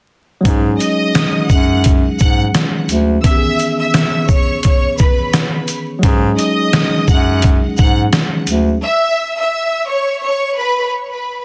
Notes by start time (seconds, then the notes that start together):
0.41 F#3 G#3
0.45 G#2 C#4 D#4, kick, closed hi-hat, shaker
0.50 G#4
0.80 D#5 D#6, closed hi-hat, shaker
1.15 snare, closed hi-hat, shaker
1.49 F#2 F#5 F#6, kick, shaker
1.84 kick, closed hi-hat, shaker
2.19 G#2 F#5 F#6, kick, shaker
2.54 snare, closed hi-hat, shaker
2.89 D2, closed hi-hat, shaker
3.22 E3 B3 E5 E6, kick, closed hi-hat, shaker
3.26 D#3 C#4
3.31 G4
3.37 G#4
3.59 closed hi-hat, shaker
3.80 E5 E6
3.94 snare, closed hi-hat, shaker
4.28 C#5 C#6, kick, shaker
4.63 C#5 C#6, kick, closed hi-hat, shaker
4.98 B4 B5, kick, shaker
5.33 snare, closed hi-hat, shaker
5.68 closed hi-hat, shaker
5.99 F#3 G#3
6.03 G#2 C#4 D#4, kick, closed hi-hat
6.08 G#4
6.38 D#5 D#6, closed hi-hat, shaker
6.73 snare, closed hi-hat
7.08 F#2 F#5 F#6, kick, shaker
7.42 kick, closed hi-hat
7.77 G#2 F#5 F#6, kick, shaker
8.13 snare, closed hi-hat
8.47 D2, closed hi-hat, shaker
8.83 E5 E6
9.38 E5 E6
9.88 C#5 C#6
10.23 C#5 C#6
10.57 B4 B5